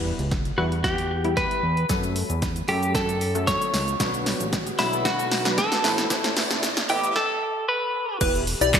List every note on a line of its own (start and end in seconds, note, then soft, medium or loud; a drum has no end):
0.00 0.13 E2 medium
0.00 0.25 G3 medium
0.00 0.25 B3 medium
0.00 0.25 E4 medium
0.00 0.25 B4 loud
0.00 impact medium
0.00 riser medium
0.19 0.52 C#2 medium
0.19 closed hi-hat medium
0.31 kick loud
0.31 snare medium
0.31 closed hi-hat medium
0.45 closed hi-hat medium
0.58 1.47 E2 medium
0.58 0.96 G3 medium
0.58 0.96 B3 medium
0.58 0.97 E4 medium
0.58 0.65 F#4 medium
0.58 0.97 B4 medium
0.72 closed hi-hat soft
0.84 1.33 G4 medium
0.84 kick loud
0.84 snare medium
0.84 closed hi-hat medium
0.98 closed hi-hat medium
1.24 1.62 G3 medium
1.24 1.62 B3 medium
1.24 1.62 E4 medium
1.24 1.62 G4 medium
1.24 closed hi-hat soft
1.37 1.86 B4 loud
1.37 kick loud
1.37 snare medium
1.37 closed hi-hat medium
1.51 closed hi-hat medium
1.63 1.85 E2 medium
1.77 closed hi-hat soft
1.89 2.23 F#2 loud
1.89 2.35 F#3 medium
1.89 2.35 A3 medium
1.89 2.35 C#4 medium
1.89 2.36 A4 medium
1.89 kick loud
1.89 snare medium
1.89 closed hi-hat medium
1.89 shaker medium
2.04 closed hi-hat medium
2.04 shaker medium
2.16 open hi-hat medium
2.16 shaker medium
2.30 2.62 E2 medium
2.30 closed hi-hat medium
2.30 shaker medium
2.42 kick loud
2.42 snare medium
2.42 closed hi-hat medium
2.42 shaker medium
2.56 closed hi-hat medium
2.56 shaker medium
2.68 3.57 F#2 medium
2.68 3.07 F#3 medium
2.68 3.07 A3 medium
2.68 3.07 C#4 medium
2.68 2.95 G4 medium
2.68 3.07 A4 medium
2.68 open hi-hat medium
2.68 shaker medium
2.83 closed hi-hat soft
2.83 shaker medium
2.95 3.49 A4 medium
2.95 kick loud
2.95 snare medium
2.95 closed hi-hat medium
2.95 shaker medium
3.09 closed hi-hat medium
3.09 shaker medium
3.21 open hi-hat medium
3.21 shaker soft
3.35 3.72 F#3 medium
3.35 3.72 A3 medium
3.35 3.72 C#4 medium
3.35 3.72 A4 medium
3.35 closed hi-hat medium
3.35 shaker medium
3.47 3.96 C#5 loud
3.47 kick loud
3.47 snare medium
3.47 closed hi-hat medium
3.47 shaker medium
3.62 closed hi-hat medium
3.62 shaker medium
3.74 3.96 C#2 medium
3.74 snare medium
3.74 open hi-hat medium
3.74 shaker medium
3.88 closed hi-hat soft
3.88 shaker medium
4.00 4.34 B1 loud
4.00 5.82 D3 medium
4.00 4.46 F#3 medium
4.00 5.82 B3 medium
4.00 4.46 B3 medium
4.00 4.46 D4 medium
4.00 5.82 F#4 medium
4.00 4.46 B4 medium
4.00 kick loud
4.00 snare medium
4.00 closed hi-hat medium
4.00 shaker medium
4.14 closed hi-hat medium
4.14 shaker medium
4.26 snare medium
4.26 open hi-hat medium
4.26 shaker medium
4.40 4.73 A1 medium
4.40 closed hi-hat medium
4.40 shaker medium
4.53 kick loud
4.53 snare medium
4.53 closed hi-hat medium
4.53 shaker medium
4.67 closed hi-hat medium
4.67 shaker medium
4.79 5.68 B1 medium
4.79 5.17 F#3 medium
4.79 5.17 B3 medium
4.79 5.18 D4 medium
4.79 5.06 E4 medium
4.79 5.18 B4 medium
4.79 snare loud
4.79 open hi-hat medium
4.79 shaker medium
4.93 closed hi-hat soft
4.93 shaker medium
5.05 5.59 F#4 medium
5.05 kick loud
5.05 snare loud
5.05 closed hi-hat medium
5.05 shaker medium
5.19 closed hi-hat medium
5.19 shaker medium
5.31 snare loud
5.31 open hi-hat medium
5.31 shaker soft
5.45 5.83 F#3 medium
5.45 5.83 B3 medium
5.45 5.83 D4 medium
5.45 5.83 B4 medium
5.45 snare loud
5.45 closed hi-hat medium
5.45 shaker medium
5.58 6.07 A4 loud
5.58 kick loud
5.58 snare loud
5.58 closed hi-hat medium
5.58 shaker medium
5.72 snare loud
5.72 closed hi-hat medium
5.72 shaker medium
5.84 6.06 A1 loud
5.84 7.14 B2 medium
5.84 6.69 A3 medium
5.84 7.14 A3 medium
5.84 6.69 B3 medium
5.84 7.14 E4 medium
5.84 6.69 E4 medium
5.84 6.69 B4 medium
5.84 snare loud
5.84 open hi-hat medium
5.84 shaker medium
5.98 snare loud
5.98 closed hi-hat soft
5.98 shaker medium
6.10 6.44 A1 loud
6.10 kick loud
6.10 snare loud
6.10 closed hi-hat medium
6.10 shaker medium
6.24 snare loud
6.24 closed hi-hat medium
6.24 shaker medium
6.37 snare loud
6.37 open hi-hat medium
6.37 shaker medium
6.51 6.83 F#1 medium
6.51 snare loud
6.51 closed hi-hat medium
6.51 shaker medium
6.63 snare loud
6.63 closed hi-hat medium
6.63 shaker medium
6.77 snare loud
6.77 closed hi-hat medium
6.77 shaker medium
6.89 7.12 A1 loud
6.89 7.16 A3 medium
6.89 7.16 B3 medium
6.89 7.16 E4 medium
6.89 7.16 G4 medium
6.89 7.16 B4 medium
6.89 open hi-hat medium
6.89 shaker medium
7.04 closed hi-hat soft
7.04 shaker medium
7.16 7.65 A4 loud
7.16 kick loud
7.16 snare loud
7.69 8.17 B4 loud
8.21 8.55 E1 loud
8.21 8.80 E3 medium
8.21 8.44 B3 medium
8.21 8.80 B3 medium
8.21 8.44 E4 medium
8.21 8.80 G4 medium
8.21 8.44 G4 medium
8.21 8.32 B4 loud
8.21 kick loud
8.21 crash loud
8.21 shaker medium
8.35 closed hi-hat medium
8.35 shaker medium
8.47 open hi-hat medium
8.47 shaker medium
8.61 8.80 B1 medium
8.61 8.80 B3 medium
8.61 8.80 E4 medium
8.61 8.80 G4 medium
8.61 8.80 D5 medium
8.61 closed hi-hat medium
8.61 shaker medium
8.74 kick loud
8.74 snare medium
8.74 clap loud
8.74 shaker medium